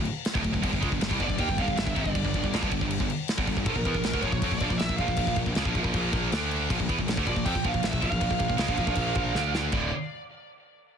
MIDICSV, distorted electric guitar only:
0, 0, Header, 1, 2, 480
1, 0, Start_track
1, 0, Tempo, 378788
1, 803, Time_signature, 4, 2, 24, 8
1, 13913, End_track
2, 0, Start_track
2, 0, Title_t, "Distorted electric guitar"
2, 0, Program_c, 0, 30
2, 434, Note_on_c, 0, 38, 100
2, 448, Note_on_c, 0, 45, 104
2, 547, Note_off_c, 0, 38, 0
2, 553, Note_off_c, 0, 45, 0
2, 562, Note_on_c, 0, 38, 68
2, 568, Note_on_c, 0, 45, 70
2, 657, Note_off_c, 0, 38, 0
2, 663, Note_off_c, 0, 45, 0
2, 673, Note_on_c, 0, 38, 72
2, 678, Note_on_c, 0, 45, 78
2, 788, Note_off_c, 0, 38, 0
2, 793, Note_on_c, 0, 43, 98
2, 798, Note_off_c, 0, 45, 0
2, 803, Note_on_c, 0, 50, 117
2, 904, Note_off_c, 0, 50, 0
2, 906, Note_off_c, 0, 43, 0
2, 919, Note_on_c, 0, 50, 71
2, 921, Note_on_c, 0, 43, 70
2, 1019, Note_off_c, 0, 50, 0
2, 1024, Note_on_c, 0, 49, 94
2, 1035, Note_on_c, 0, 56, 98
2, 1042, Note_off_c, 0, 43, 0
2, 1147, Note_off_c, 0, 49, 0
2, 1152, Note_off_c, 0, 56, 0
2, 1152, Note_on_c, 0, 43, 61
2, 1159, Note_on_c, 0, 50, 76
2, 1263, Note_off_c, 0, 43, 0
2, 1266, Note_off_c, 0, 50, 0
2, 1278, Note_on_c, 0, 43, 73
2, 1281, Note_on_c, 0, 50, 82
2, 1378, Note_off_c, 0, 43, 0
2, 1383, Note_on_c, 0, 48, 83
2, 1396, Note_off_c, 0, 50, 0
2, 1401, Note_on_c, 0, 55, 100
2, 1501, Note_off_c, 0, 48, 0
2, 1506, Note_on_c, 0, 43, 87
2, 1515, Note_off_c, 0, 55, 0
2, 1521, Note_on_c, 0, 50, 104
2, 1603, Note_off_c, 0, 43, 0
2, 1609, Note_off_c, 0, 50, 0
2, 1618, Note_on_c, 0, 43, 66
2, 1624, Note_on_c, 0, 50, 70
2, 1738, Note_off_c, 0, 50, 0
2, 1743, Note_on_c, 0, 51, 105
2, 1751, Note_off_c, 0, 43, 0
2, 1755, Note_on_c, 0, 58, 120
2, 1866, Note_off_c, 0, 51, 0
2, 1872, Note_off_c, 0, 58, 0
2, 1872, Note_on_c, 0, 43, 67
2, 1878, Note_on_c, 0, 50, 72
2, 1983, Note_off_c, 0, 43, 0
2, 1994, Note_off_c, 0, 50, 0
2, 1998, Note_on_c, 0, 43, 93
2, 2009, Note_on_c, 0, 50, 107
2, 2101, Note_off_c, 0, 50, 0
2, 2102, Note_off_c, 0, 43, 0
2, 2116, Note_on_c, 0, 50, 68
2, 2117, Note_on_c, 0, 43, 64
2, 2209, Note_off_c, 0, 43, 0
2, 2218, Note_off_c, 0, 50, 0
2, 2224, Note_on_c, 0, 43, 62
2, 2233, Note_on_c, 0, 50, 79
2, 2344, Note_off_c, 0, 43, 0
2, 2351, Note_off_c, 0, 50, 0
2, 2359, Note_on_c, 0, 43, 65
2, 2366, Note_on_c, 0, 50, 83
2, 2467, Note_off_c, 0, 43, 0
2, 2472, Note_on_c, 0, 44, 94
2, 2476, Note_off_c, 0, 50, 0
2, 2481, Note_on_c, 0, 51, 95
2, 2590, Note_off_c, 0, 44, 0
2, 2594, Note_off_c, 0, 51, 0
2, 2599, Note_on_c, 0, 43, 73
2, 2603, Note_on_c, 0, 50, 83
2, 2710, Note_off_c, 0, 43, 0
2, 2716, Note_off_c, 0, 50, 0
2, 2725, Note_on_c, 0, 43, 71
2, 2731, Note_on_c, 0, 50, 72
2, 2826, Note_off_c, 0, 43, 0
2, 2833, Note_off_c, 0, 50, 0
2, 2842, Note_on_c, 0, 43, 69
2, 2848, Note_on_c, 0, 50, 76
2, 2962, Note_off_c, 0, 43, 0
2, 2965, Note_off_c, 0, 50, 0
2, 2982, Note_on_c, 0, 43, 68
2, 2985, Note_on_c, 0, 50, 77
2, 3087, Note_off_c, 0, 43, 0
2, 3090, Note_off_c, 0, 50, 0
2, 3102, Note_on_c, 0, 43, 65
2, 3105, Note_on_c, 0, 50, 71
2, 3202, Note_off_c, 0, 43, 0
2, 3207, Note_on_c, 0, 46, 95
2, 3209, Note_off_c, 0, 50, 0
2, 3214, Note_on_c, 0, 53, 104
2, 3316, Note_off_c, 0, 46, 0
2, 3321, Note_off_c, 0, 53, 0
2, 3321, Note_on_c, 0, 43, 84
2, 3337, Note_on_c, 0, 50, 95
2, 3434, Note_off_c, 0, 43, 0
2, 3442, Note_off_c, 0, 50, 0
2, 3449, Note_on_c, 0, 43, 63
2, 3458, Note_on_c, 0, 50, 71
2, 3561, Note_off_c, 0, 43, 0
2, 3564, Note_off_c, 0, 50, 0
2, 3576, Note_on_c, 0, 43, 65
2, 3579, Note_on_c, 0, 50, 78
2, 3761, Note_off_c, 0, 43, 0
2, 3762, Note_off_c, 0, 50, 0
2, 3809, Note_on_c, 0, 43, 66
2, 3813, Note_on_c, 0, 50, 78
2, 3926, Note_off_c, 0, 43, 0
2, 3927, Note_off_c, 0, 50, 0
2, 4280, Note_on_c, 0, 43, 91
2, 4290, Note_on_c, 0, 50, 100
2, 4394, Note_off_c, 0, 43, 0
2, 4399, Note_off_c, 0, 50, 0
2, 4413, Note_on_c, 0, 43, 67
2, 4416, Note_on_c, 0, 50, 73
2, 4517, Note_off_c, 0, 43, 0
2, 4529, Note_off_c, 0, 50, 0
2, 4532, Note_on_c, 0, 43, 60
2, 4544, Note_on_c, 0, 50, 74
2, 4647, Note_off_c, 0, 43, 0
2, 4653, Note_off_c, 0, 50, 0
2, 4655, Note_on_c, 0, 46, 92
2, 4665, Note_on_c, 0, 53, 119
2, 4758, Note_off_c, 0, 46, 0
2, 4764, Note_off_c, 0, 53, 0
2, 4773, Note_on_c, 0, 46, 70
2, 4779, Note_on_c, 0, 53, 70
2, 4885, Note_off_c, 0, 53, 0
2, 4887, Note_off_c, 0, 46, 0
2, 4890, Note_on_c, 0, 52, 95
2, 4902, Note_on_c, 0, 59, 109
2, 4998, Note_off_c, 0, 52, 0
2, 5004, Note_off_c, 0, 59, 0
2, 5010, Note_on_c, 0, 46, 63
2, 5020, Note_on_c, 0, 53, 65
2, 5118, Note_off_c, 0, 46, 0
2, 5120, Note_off_c, 0, 53, 0
2, 5133, Note_on_c, 0, 46, 76
2, 5135, Note_on_c, 0, 53, 75
2, 5237, Note_off_c, 0, 53, 0
2, 5242, Note_on_c, 0, 50, 94
2, 5247, Note_off_c, 0, 46, 0
2, 5252, Note_on_c, 0, 57, 90
2, 5355, Note_off_c, 0, 50, 0
2, 5359, Note_off_c, 0, 57, 0
2, 5366, Note_on_c, 0, 46, 90
2, 5383, Note_on_c, 0, 53, 112
2, 5468, Note_off_c, 0, 46, 0
2, 5473, Note_off_c, 0, 53, 0
2, 5483, Note_on_c, 0, 46, 66
2, 5488, Note_on_c, 0, 53, 70
2, 5596, Note_off_c, 0, 53, 0
2, 5602, Note_off_c, 0, 46, 0
2, 5611, Note_on_c, 0, 53, 99
2, 5622, Note_on_c, 0, 60, 102
2, 5719, Note_off_c, 0, 53, 0
2, 5725, Note_off_c, 0, 60, 0
2, 5731, Note_on_c, 0, 46, 64
2, 5740, Note_on_c, 0, 53, 67
2, 5831, Note_off_c, 0, 46, 0
2, 5845, Note_off_c, 0, 53, 0
2, 5846, Note_on_c, 0, 46, 87
2, 5860, Note_on_c, 0, 53, 98
2, 5957, Note_off_c, 0, 46, 0
2, 5964, Note_off_c, 0, 53, 0
2, 5984, Note_on_c, 0, 46, 68
2, 5984, Note_on_c, 0, 53, 84
2, 6080, Note_off_c, 0, 46, 0
2, 6085, Note_off_c, 0, 53, 0
2, 6095, Note_on_c, 0, 46, 61
2, 6100, Note_on_c, 0, 53, 69
2, 6201, Note_off_c, 0, 46, 0
2, 6204, Note_off_c, 0, 53, 0
2, 6216, Note_on_c, 0, 46, 72
2, 6219, Note_on_c, 0, 53, 72
2, 6320, Note_off_c, 0, 46, 0
2, 6331, Note_off_c, 0, 53, 0
2, 6335, Note_on_c, 0, 46, 98
2, 6349, Note_on_c, 0, 53, 107
2, 6438, Note_off_c, 0, 46, 0
2, 6439, Note_off_c, 0, 53, 0
2, 6453, Note_on_c, 0, 46, 64
2, 6454, Note_on_c, 0, 53, 70
2, 6553, Note_off_c, 0, 46, 0
2, 6557, Note_off_c, 0, 53, 0
2, 6568, Note_on_c, 0, 46, 62
2, 6572, Note_on_c, 0, 53, 78
2, 6677, Note_off_c, 0, 46, 0
2, 6681, Note_off_c, 0, 53, 0
2, 6692, Note_on_c, 0, 46, 76
2, 6696, Note_on_c, 0, 53, 73
2, 6799, Note_off_c, 0, 46, 0
2, 6803, Note_off_c, 0, 53, 0
2, 6814, Note_on_c, 0, 46, 72
2, 6818, Note_on_c, 0, 53, 77
2, 6921, Note_off_c, 0, 46, 0
2, 6923, Note_off_c, 0, 53, 0
2, 6936, Note_on_c, 0, 46, 65
2, 6938, Note_on_c, 0, 53, 72
2, 7049, Note_off_c, 0, 46, 0
2, 7050, Note_off_c, 0, 53, 0
2, 7055, Note_on_c, 0, 49, 97
2, 7061, Note_on_c, 0, 56, 102
2, 7161, Note_off_c, 0, 49, 0
2, 7163, Note_on_c, 0, 46, 80
2, 7164, Note_off_c, 0, 56, 0
2, 7179, Note_on_c, 0, 53, 106
2, 7276, Note_off_c, 0, 46, 0
2, 7283, Note_off_c, 0, 53, 0
2, 7293, Note_on_c, 0, 46, 90
2, 7306, Note_on_c, 0, 53, 102
2, 7401, Note_off_c, 0, 46, 0
2, 7407, Note_off_c, 0, 53, 0
2, 7414, Note_on_c, 0, 46, 93
2, 7425, Note_on_c, 0, 53, 93
2, 7513, Note_off_c, 0, 46, 0
2, 7523, Note_off_c, 0, 53, 0
2, 7528, Note_on_c, 0, 46, 97
2, 7538, Note_on_c, 0, 53, 102
2, 7548, Note_on_c, 0, 58, 116
2, 7745, Note_off_c, 0, 46, 0
2, 7756, Note_off_c, 0, 53, 0
2, 7760, Note_on_c, 0, 46, 100
2, 7762, Note_off_c, 0, 58, 0
2, 7771, Note_on_c, 0, 53, 95
2, 7777, Note_on_c, 0, 58, 103
2, 7995, Note_off_c, 0, 46, 0
2, 8000, Note_off_c, 0, 53, 0
2, 8003, Note_off_c, 0, 58, 0
2, 8014, Note_on_c, 0, 50, 103
2, 8018, Note_on_c, 0, 57, 98
2, 8030, Note_on_c, 0, 62, 105
2, 8478, Note_on_c, 0, 46, 93
2, 8482, Note_off_c, 0, 50, 0
2, 8483, Note_off_c, 0, 57, 0
2, 8489, Note_off_c, 0, 62, 0
2, 8491, Note_on_c, 0, 53, 103
2, 8594, Note_off_c, 0, 46, 0
2, 8600, Note_off_c, 0, 53, 0
2, 8612, Note_on_c, 0, 46, 68
2, 8614, Note_on_c, 0, 53, 82
2, 8723, Note_off_c, 0, 53, 0
2, 8727, Note_off_c, 0, 46, 0
2, 8728, Note_on_c, 0, 52, 88
2, 8735, Note_on_c, 0, 59, 113
2, 8838, Note_off_c, 0, 52, 0
2, 8842, Note_off_c, 0, 59, 0
2, 8854, Note_on_c, 0, 46, 63
2, 8856, Note_on_c, 0, 53, 72
2, 8955, Note_off_c, 0, 46, 0
2, 8959, Note_off_c, 0, 53, 0
2, 8970, Note_on_c, 0, 46, 66
2, 8974, Note_on_c, 0, 53, 77
2, 9087, Note_off_c, 0, 46, 0
2, 9089, Note_off_c, 0, 53, 0
2, 9096, Note_on_c, 0, 50, 82
2, 9109, Note_on_c, 0, 57, 92
2, 9203, Note_off_c, 0, 50, 0
2, 9209, Note_off_c, 0, 57, 0
2, 9211, Note_on_c, 0, 46, 91
2, 9223, Note_on_c, 0, 53, 109
2, 9321, Note_off_c, 0, 46, 0
2, 9326, Note_off_c, 0, 53, 0
2, 9334, Note_on_c, 0, 46, 70
2, 9339, Note_on_c, 0, 53, 82
2, 9438, Note_off_c, 0, 53, 0
2, 9449, Note_off_c, 0, 46, 0
2, 9453, Note_on_c, 0, 53, 101
2, 9463, Note_on_c, 0, 60, 114
2, 9561, Note_off_c, 0, 53, 0
2, 9566, Note_off_c, 0, 60, 0
2, 9576, Note_on_c, 0, 46, 69
2, 9583, Note_on_c, 0, 53, 80
2, 9668, Note_off_c, 0, 46, 0
2, 9678, Note_off_c, 0, 53, 0
2, 9684, Note_on_c, 0, 46, 94
2, 9693, Note_on_c, 0, 53, 111
2, 9788, Note_off_c, 0, 53, 0
2, 9794, Note_off_c, 0, 46, 0
2, 9803, Note_on_c, 0, 53, 73
2, 9809, Note_on_c, 0, 46, 69
2, 9904, Note_off_c, 0, 46, 0
2, 9906, Note_off_c, 0, 53, 0
2, 9919, Note_on_c, 0, 46, 72
2, 9922, Note_on_c, 0, 53, 78
2, 10009, Note_off_c, 0, 46, 0
2, 10014, Note_off_c, 0, 53, 0
2, 10025, Note_on_c, 0, 46, 69
2, 10029, Note_on_c, 0, 53, 76
2, 10136, Note_off_c, 0, 46, 0
2, 10147, Note_off_c, 0, 53, 0
2, 10151, Note_on_c, 0, 46, 93
2, 10162, Note_on_c, 0, 53, 105
2, 10252, Note_off_c, 0, 46, 0
2, 10258, Note_off_c, 0, 53, 0
2, 10267, Note_on_c, 0, 46, 72
2, 10273, Note_on_c, 0, 53, 78
2, 10382, Note_off_c, 0, 46, 0
2, 10386, Note_off_c, 0, 53, 0
2, 10397, Note_on_c, 0, 46, 64
2, 10401, Note_on_c, 0, 53, 76
2, 10505, Note_off_c, 0, 46, 0
2, 10507, Note_off_c, 0, 53, 0
2, 10521, Note_on_c, 0, 46, 71
2, 10522, Note_on_c, 0, 53, 74
2, 10618, Note_off_c, 0, 46, 0
2, 10627, Note_off_c, 0, 53, 0
2, 10633, Note_on_c, 0, 46, 71
2, 10642, Note_on_c, 0, 53, 67
2, 10737, Note_off_c, 0, 46, 0
2, 10740, Note_off_c, 0, 53, 0
2, 10752, Note_on_c, 0, 46, 67
2, 10755, Note_on_c, 0, 53, 68
2, 10860, Note_off_c, 0, 53, 0
2, 10865, Note_on_c, 0, 49, 94
2, 10877, Note_on_c, 0, 56, 106
2, 10879, Note_off_c, 0, 46, 0
2, 10988, Note_off_c, 0, 49, 0
2, 10994, Note_off_c, 0, 56, 0
2, 10998, Note_on_c, 0, 46, 79
2, 11012, Note_on_c, 0, 53, 99
2, 11102, Note_off_c, 0, 46, 0
2, 11110, Note_off_c, 0, 53, 0
2, 11117, Note_on_c, 0, 46, 99
2, 11125, Note_on_c, 0, 53, 105
2, 11218, Note_off_c, 0, 46, 0
2, 11227, Note_off_c, 0, 53, 0
2, 11233, Note_on_c, 0, 46, 87
2, 11242, Note_on_c, 0, 53, 100
2, 11337, Note_off_c, 0, 46, 0
2, 11344, Note_off_c, 0, 53, 0
2, 11352, Note_on_c, 0, 46, 100
2, 11359, Note_on_c, 0, 53, 106
2, 11372, Note_on_c, 0, 58, 116
2, 11583, Note_off_c, 0, 46, 0
2, 11590, Note_off_c, 0, 53, 0
2, 11598, Note_off_c, 0, 58, 0
2, 11599, Note_on_c, 0, 46, 90
2, 11605, Note_on_c, 0, 53, 99
2, 11613, Note_on_c, 0, 58, 93
2, 11824, Note_off_c, 0, 53, 0
2, 11829, Note_on_c, 0, 50, 90
2, 11835, Note_off_c, 0, 46, 0
2, 11837, Note_off_c, 0, 58, 0
2, 11842, Note_on_c, 0, 57, 92
2, 11846, Note_on_c, 0, 62, 101
2, 12310, Note_off_c, 0, 50, 0
2, 12317, Note_off_c, 0, 57, 0
2, 12319, Note_off_c, 0, 62, 0
2, 12324, Note_on_c, 0, 38, 91
2, 12332, Note_on_c, 0, 45, 113
2, 12343, Note_on_c, 0, 50, 110
2, 12517, Note_off_c, 0, 38, 0
2, 12521, Note_off_c, 0, 45, 0
2, 12527, Note_off_c, 0, 50, 0
2, 13913, End_track
0, 0, End_of_file